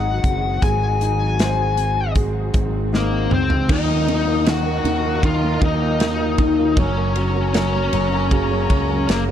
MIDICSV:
0, 0, Header, 1, 9, 480
1, 0, Start_track
1, 0, Tempo, 769231
1, 388, Time_signature, 4, 2, 24, 8
1, 5812, End_track
2, 0, Start_track
2, 0, Title_t, "Lead electric guitar"
2, 0, Program_c, 0, 29
2, 0, Note_on_c, 0, 78, 100
2, 392, Note_off_c, 0, 78, 0
2, 394, Note_on_c, 0, 80, 100
2, 1326, Note_off_c, 0, 80, 0
2, 1839, Note_on_c, 0, 58, 70
2, 1848, Note_on_c, 0, 70, 89
2, 2057, Note_off_c, 0, 58, 0
2, 2080, Note_on_c, 0, 60, 68
2, 2081, Note_off_c, 0, 70, 0
2, 2084, Note_on_c, 0, 72, 88
2, 2298, Note_off_c, 0, 60, 0
2, 2316, Note_on_c, 0, 63, 80
2, 2323, Note_off_c, 0, 72, 0
2, 2323, Note_on_c, 0, 75, 104
2, 2767, Note_off_c, 0, 63, 0
2, 2799, Note_on_c, 0, 66, 74
2, 2806, Note_on_c, 0, 78, 101
2, 2810, Note_off_c, 0, 75, 0
2, 3249, Note_off_c, 0, 66, 0
2, 3276, Note_on_c, 0, 65, 78
2, 3281, Note_on_c, 0, 77, 95
2, 3291, Note_off_c, 0, 78, 0
2, 3495, Note_off_c, 0, 65, 0
2, 3522, Note_off_c, 0, 77, 0
2, 3523, Note_on_c, 0, 63, 74
2, 3528, Note_on_c, 0, 75, 107
2, 4211, Note_off_c, 0, 63, 0
2, 4239, Note_on_c, 0, 61, 80
2, 4240, Note_off_c, 0, 75, 0
2, 4242, Note_on_c, 0, 73, 97
2, 4689, Note_off_c, 0, 61, 0
2, 4720, Note_off_c, 0, 73, 0
2, 4720, Note_on_c, 0, 61, 69
2, 4728, Note_on_c, 0, 73, 92
2, 5649, Note_off_c, 0, 61, 0
2, 5686, Note_on_c, 0, 58, 69
2, 5687, Note_on_c, 0, 70, 74
2, 5706, Note_off_c, 0, 73, 0
2, 5748, Note_off_c, 0, 70, 0
2, 5749, Note_off_c, 0, 58, 0
2, 5812, End_track
3, 0, Start_track
3, 0, Title_t, "String section"
3, 0, Program_c, 1, 48
3, 0, Note_on_c, 1, 51, 68
3, 0, Note_on_c, 1, 54, 65
3, 0, Note_on_c, 1, 56, 61
3, 0, Note_on_c, 1, 66, 75
3, 2284, Note_off_c, 1, 56, 0
3, 2288, Note_off_c, 1, 51, 0
3, 2288, Note_off_c, 1, 66, 0
3, 2289, Note_off_c, 1, 54, 0
3, 2310, Note_on_c, 1, 70, 64
3, 2311, Note_on_c, 1, 54, 62
3, 2312, Note_on_c, 1, 75, 80
3, 2313, Note_on_c, 1, 63, 72
3, 4210, Note_off_c, 1, 70, 0
3, 4211, Note_off_c, 1, 63, 0
3, 4211, Note_off_c, 1, 75, 0
3, 4229, Note_on_c, 1, 70, 71
3, 4231, Note_on_c, 1, 82, 82
3, 5812, Note_off_c, 1, 54, 0
3, 5812, Note_off_c, 1, 70, 0
3, 5812, Note_off_c, 1, 82, 0
3, 5812, End_track
4, 0, Start_track
4, 0, Title_t, "Steel-string acoustic guitar"
4, 0, Program_c, 2, 25
4, 0, Note_on_c, 2, 44, 72
4, 0, Note_on_c, 2, 56, 55
4, 0, Note_on_c, 2, 60, 56
4, 0, Note_on_c, 2, 68, 64
4, 138, Note_off_c, 2, 60, 0
4, 146, Note_on_c, 2, 60, 54
4, 380, Note_off_c, 2, 44, 0
4, 383, Note_off_c, 2, 68, 0
4, 388, Note_on_c, 2, 44, 78
4, 391, Note_on_c, 2, 68, 65
4, 621, Note_off_c, 2, 60, 0
4, 629, Note_on_c, 2, 60, 58
4, 861, Note_off_c, 2, 56, 0
4, 869, Note_on_c, 2, 56, 57
4, 1101, Note_off_c, 2, 60, 0
4, 1108, Note_on_c, 2, 60, 60
4, 1340, Note_off_c, 2, 56, 0
4, 1347, Note_on_c, 2, 56, 61
4, 1577, Note_off_c, 2, 60, 0
4, 1584, Note_on_c, 2, 60, 60
4, 1818, Note_off_c, 2, 56, 0
4, 1826, Note_on_c, 2, 56, 59
4, 2059, Note_off_c, 2, 60, 0
4, 2066, Note_on_c, 2, 60, 56
4, 2304, Note_on_c, 2, 51, 77
4, 2306, Note_off_c, 2, 68, 0
4, 2308, Note_off_c, 2, 44, 0
4, 2309, Note_on_c, 2, 65, 62
4, 2355, Note_off_c, 2, 56, 0
4, 2355, Note_off_c, 2, 60, 0
4, 2429, Note_on_c, 2, 58, 55
4, 2547, Note_on_c, 2, 63, 60
4, 2669, Note_off_c, 2, 65, 0
4, 2778, Note_off_c, 2, 63, 0
4, 2786, Note_on_c, 2, 63, 58
4, 2908, Note_off_c, 2, 58, 0
4, 2910, Note_on_c, 2, 58, 56
4, 3021, Note_off_c, 2, 63, 0
4, 3028, Note_on_c, 2, 63, 55
4, 3147, Note_on_c, 2, 65, 65
4, 3261, Note_off_c, 2, 51, 0
4, 3266, Note_off_c, 2, 65, 0
4, 3269, Note_on_c, 2, 51, 80
4, 3273, Note_on_c, 2, 65, 65
4, 3388, Note_off_c, 2, 58, 0
4, 3391, Note_on_c, 2, 58, 57
4, 3506, Note_off_c, 2, 63, 0
4, 3513, Note_on_c, 2, 63, 56
4, 3625, Note_off_c, 2, 65, 0
4, 3632, Note_on_c, 2, 65, 66
4, 3744, Note_off_c, 2, 63, 0
4, 3751, Note_on_c, 2, 63, 64
4, 3870, Note_off_c, 2, 58, 0
4, 3873, Note_on_c, 2, 58, 58
4, 3984, Note_off_c, 2, 63, 0
4, 3992, Note_on_c, 2, 63, 56
4, 4104, Note_off_c, 2, 65, 0
4, 4112, Note_on_c, 2, 65, 63
4, 4230, Note_off_c, 2, 65, 0
4, 4231, Note_on_c, 2, 42, 78
4, 4234, Note_on_c, 2, 66, 72
4, 4276, Note_off_c, 2, 51, 0
4, 4278, Note_off_c, 2, 63, 0
4, 4349, Note_off_c, 2, 58, 0
4, 4352, Note_on_c, 2, 58, 56
4, 4476, Note_on_c, 2, 61, 62
4, 4586, Note_off_c, 2, 66, 0
4, 4594, Note_on_c, 2, 66, 66
4, 4710, Note_off_c, 2, 61, 0
4, 4713, Note_on_c, 2, 61, 56
4, 4825, Note_off_c, 2, 58, 0
4, 4833, Note_on_c, 2, 58, 61
4, 4949, Note_off_c, 2, 61, 0
4, 4952, Note_on_c, 2, 61, 60
4, 5066, Note_off_c, 2, 66, 0
4, 5073, Note_on_c, 2, 66, 64
4, 5185, Note_off_c, 2, 42, 0
4, 5191, Note_off_c, 2, 66, 0
4, 5192, Note_on_c, 2, 42, 84
4, 5197, Note_on_c, 2, 66, 68
4, 5304, Note_off_c, 2, 58, 0
4, 5312, Note_on_c, 2, 58, 58
4, 5427, Note_off_c, 2, 61, 0
4, 5430, Note_on_c, 2, 61, 63
4, 5542, Note_off_c, 2, 66, 0
4, 5550, Note_on_c, 2, 66, 67
4, 5667, Note_off_c, 2, 61, 0
4, 5670, Note_on_c, 2, 61, 59
4, 5784, Note_off_c, 2, 58, 0
4, 5791, Note_on_c, 2, 58, 60
4, 5812, Note_off_c, 2, 42, 0
4, 5812, Note_off_c, 2, 58, 0
4, 5812, Note_off_c, 2, 61, 0
4, 5812, Note_off_c, 2, 66, 0
4, 5812, End_track
5, 0, Start_track
5, 0, Title_t, "Grand piano"
5, 0, Program_c, 3, 0
5, 0, Control_c, 3, 64, 127
5, 0, Note_on_c, 3, 56, 56
5, 0, Note_on_c, 3, 63, 55
5, 0, Note_on_c, 3, 72, 56
5, 367, Note_off_c, 3, 56, 0
5, 393, Note_on_c, 3, 56, 64
5, 627, Note_off_c, 3, 63, 0
5, 637, Note_on_c, 3, 63, 52
5, 875, Note_off_c, 3, 72, 0
5, 875, Note_on_c, 3, 72, 54
5, 1338, Note_off_c, 3, 56, 0
5, 1347, Note_on_c, 3, 56, 56
5, 1567, Note_off_c, 3, 63, 0
5, 1807, Note_off_c, 3, 72, 0
5, 1829, Note_on_c, 3, 63, 52
5, 2283, Note_off_c, 3, 56, 0
5, 2294, Note_off_c, 3, 63, 0
5, 2307, Note_on_c, 3, 51, 66
5, 2316, Control_c, 3, 64, 0
5, 2429, Note_on_c, 3, 58, 51
5, 2430, Control_c, 3, 64, 127
5, 2539, Note_off_c, 3, 51, 0
5, 2549, Note_on_c, 3, 51, 54
5, 2656, Note_off_c, 3, 58, 0
5, 2666, Note_on_c, 3, 58, 51
5, 2778, Note_off_c, 3, 51, 0
5, 2787, Note_on_c, 3, 51, 59
5, 2896, Note_off_c, 3, 58, 0
5, 2905, Note_on_c, 3, 58, 52
5, 3021, Note_off_c, 3, 51, 0
5, 3031, Note_on_c, 3, 51, 58
5, 3135, Note_off_c, 3, 58, 0
5, 3144, Note_on_c, 3, 58, 53
5, 3260, Note_off_c, 3, 51, 0
5, 3270, Note_on_c, 3, 51, 67
5, 3381, Note_off_c, 3, 58, 0
5, 3391, Note_on_c, 3, 58, 58
5, 3496, Note_off_c, 3, 51, 0
5, 3506, Note_on_c, 3, 51, 55
5, 3621, Note_off_c, 3, 58, 0
5, 3631, Note_on_c, 3, 58, 53
5, 3740, Note_off_c, 3, 51, 0
5, 3749, Note_on_c, 3, 51, 56
5, 3854, Note_off_c, 3, 58, 0
5, 3863, Note_on_c, 3, 58, 50
5, 3981, Note_off_c, 3, 51, 0
5, 3990, Note_on_c, 3, 51, 53
5, 4100, Note_off_c, 3, 58, 0
5, 4109, Note_on_c, 3, 58, 55
5, 4222, Note_off_c, 3, 51, 0
5, 4225, Note_off_c, 3, 58, 0
5, 4229, Note_on_c, 3, 54, 70
5, 4236, Control_c, 3, 64, 0
5, 4345, Note_off_c, 3, 54, 0
5, 4345, Control_c, 3, 64, 127
5, 4354, Note_on_c, 3, 54, 50
5, 4457, Note_off_c, 3, 54, 0
5, 4467, Note_on_c, 3, 54, 54
5, 4584, Note_off_c, 3, 54, 0
5, 4593, Note_on_c, 3, 54, 50
5, 4699, Note_off_c, 3, 54, 0
5, 4708, Note_on_c, 3, 54, 60
5, 4818, Note_off_c, 3, 54, 0
5, 4828, Note_on_c, 3, 54, 52
5, 4937, Note_off_c, 3, 54, 0
5, 4947, Note_on_c, 3, 54, 62
5, 5059, Note_off_c, 3, 54, 0
5, 5068, Note_on_c, 3, 54, 54
5, 5188, Note_on_c, 3, 49, 70
5, 5301, Note_off_c, 3, 54, 0
5, 5311, Note_on_c, 3, 54, 58
5, 5417, Note_off_c, 3, 54, 0
5, 5426, Note_on_c, 3, 54, 53
5, 5541, Note_off_c, 3, 54, 0
5, 5550, Note_on_c, 3, 54, 56
5, 5663, Note_off_c, 3, 54, 0
5, 5672, Note_on_c, 3, 54, 59
5, 5784, Note_off_c, 3, 54, 0
5, 5812, Note_off_c, 3, 49, 0
5, 5812, End_track
6, 0, Start_track
6, 0, Title_t, "Fretless electric bass"
6, 0, Program_c, 4, 35
6, 0, Note_on_c, 4, 32, 85
6, 123, Note_off_c, 4, 32, 0
6, 148, Note_on_c, 4, 30, 78
6, 371, Note_off_c, 4, 30, 0
6, 392, Note_on_c, 4, 32, 94
6, 1565, Note_off_c, 4, 32, 0
6, 1588, Note_on_c, 4, 32, 85
6, 2043, Note_off_c, 4, 32, 0
6, 2073, Note_on_c, 4, 37, 87
6, 2294, Note_off_c, 4, 37, 0
6, 2304, Note_on_c, 4, 39, 93
6, 3001, Note_off_c, 4, 39, 0
6, 3023, Note_on_c, 4, 39, 96
6, 3481, Note_off_c, 4, 39, 0
6, 3504, Note_on_c, 4, 39, 88
6, 4224, Note_on_c, 4, 30, 91
6, 4233, Note_off_c, 4, 39, 0
6, 4921, Note_off_c, 4, 30, 0
6, 4947, Note_on_c, 4, 30, 84
6, 5403, Note_off_c, 4, 30, 0
6, 5431, Note_on_c, 4, 37, 90
6, 5653, Note_off_c, 4, 37, 0
6, 5670, Note_on_c, 4, 30, 84
6, 5812, Note_off_c, 4, 30, 0
6, 5812, End_track
7, 0, Start_track
7, 0, Title_t, "Downlifter"
7, 0, Program_c, 5, 103
7, 2307, Note_on_c, 5, 60, 78
7, 5812, Note_off_c, 5, 60, 0
7, 5812, End_track
8, 0, Start_track
8, 0, Title_t, "Swell"
8, 0, Program_c, 6, 103
8, 390, Note_on_c, 6, 60, 80
8, 2309, Note_off_c, 6, 60, 0
8, 5812, End_track
9, 0, Start_track
9, 0, Title_t, "Drums"
9, 148, Note_on_c, 9, 42, 65
9, 149, Note_on_c, 9, 36, 79
9, 211, Note_off_c, 9, 42, 0
9, 212, Note_off_c, 9, 36, 0
9, 389, Note_on_c, 9, 36, 96
9, 390, Note_on_c, 9, 42, 72
9, 452, Note_off_c, 9, 36, 0
9, 452, Note_off_c, 9, 42, 0
9, 630, Note_on_c, 9, 42, 68
9, 693, Note_off_c, 9, 42, 0
9, 869, Note_on_c, 9, 42, 84
9, 875, Note_on_c, 9, 38, 101
9, 932, Note_off_c, 9, 42, 0
9, 938, Note_off_c, 9, 38, 0
9, 1107, Note_on_c, 9, 42, 72
9, 1169, Note_off_c, 9, 42, 0
9, 1343, Note_on_c, 9, 42, 72
9, 1345, Note_on_c, 9, 36, 78
9, 1406, Note_off_c, 9, 42, 0
9, 1408, Note_off_c, 9, 36, 0
9, 1583, Note_on_c, 9, 42, 65
9, 1586, Note_on_c, 9, 36, 84
9, 1646, Note_off_c, 9, 42, 0
9, 1649, Note_off_c, 9, 36, 0
9, 1835, Note_on_c, 9, 38, 54
9, 1897, Note_off_c, 9, 38, 0
9, 2067, Note_on_c, 9, 45, 77
9, 2129, Note_off_c, 9, 45, 0
9, 2184, Note_on_c, 9, 43, 77
9, 2247, Note_off_c, 9, 43, 0
9, 2303, Note_on_c, 9, 49, 89
9, 2305, Note_on_c, 9, 36, 98
9, 2366, Note_off_c, 9, 49, 0
9, 2367, Note_off_c, 9, 36, 0
9, 2548, Note_on_c, 9, 51, 52
9, 2610, Note_off_c, 9, 51, 0
9, 2786, Note_on_c, 9, 51, 68
9, 2791, Note_on_c, 9, 38, 98
9, 2848, Note_off_c, 9, 51, 0
9, 2854, Note_off_c, 9, 38, 0
9, 3027, Note_on_c, 9, 51, 61
9, 3089, Note_off_c, 9, 51, 0
9, 3264, Note_on_c, 9, 36, 81
9, 3267, Note_on_c, 9, 51, 60
9, 3327, Note_off_c, 9, 36, 0
9, 3330, Note_off_c, 9, 51, 0
9, 3503, Note_on_c, 9, 51, 52
9, 3505, Note_on_c, 9, 36, 88
9, 3566, Note_off_c, 9, 51, 0
9, 3567, Note_off_c, 9, 36, 0
9, 3744, Note_on_c, 9, 51, 79
9, 3752, Note_on_c, 9, 38, 101
9, 3806, Note_off_c, 9, 51, 0
9, 3814, Note_off_c, 9, 38, 0
9, 3982, Note_on_c, 9, 51, 55
9, 3984, Note_on_c, 9, 36, 85
9, 4045, Note_off_c, 9, 51, 0
9, 4047, Note_off_c, 9, 36, 0
9, 4223, Note_on_c, 9, 51, 60
9, 4224, Note_on_c, 9, 36, 97
9, 4286, Note_off_c, 9, 36, 0
9, 4286, Note_off_c, 9, 51, 0
9, 4465, Note_on_c, 9, 51, 57
9, 4527, Note_off_c, 9, 51, 0
9, 4706, Note_on_c, 9, 51, 70
9, 4712, Note_on_c, 9, 38, 102
9, 4769, Note_off_c, 9, 51, 0
9, 4775, Note_off_c, 9, 38, 0
9, 4946, Note_on_c, 9, 51, 65
9, 5009, Note_off_c, 9, 51, 0
9, 5187, Note_on_c, 9, 36, 82
9, 5188, Note_on_c, 9, 51, 57
9, 5249, Note_off_c, 9, 36, 0
9, 5251, Note_off_c, 9, 51, 0
9, 5429, Note_on_c, 9, 36, 92
9, 5431, Note_on_c, 9, 51, 60
9, 5491, Note_off_c, 9, 36, 0
9, 5493, Note_off_c, 9, 51, 0
9, 5670, Note_on_c, 9, 51, 77
9, 5678, Note_on_c, 9, 38, 95
9, 5732, Note_off_c, 9, 51, 0
9, 5740, Note_off_c, 9, 38, 0
9, 5812, End_track
0, 0, End_of_file